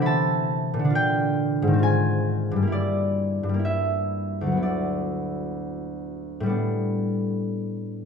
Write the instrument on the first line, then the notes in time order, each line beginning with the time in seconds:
harp
Already playing: C3 E3 A3 C4 F#5
0.01 E4 B5
0.06 A5
0.74 A#2
0.79 D3
0.85 D4
0.90 F4
0.95 G5
1.62 G#2
1.67 D#3
1.73 C4
1.79 F4
1.83 G#5
2.51 G2
2.56 G3
2.62 A#3
2.67 E4
2.72 D5
3.43 G2
3.49 G3
3.54 A#3
3.59 E4
3.65 E5
4.41 D2
4.47 F#3
4.52 B3
4.57 E4
4.63 D5
6.40 A2 G3
6.46 B3 D4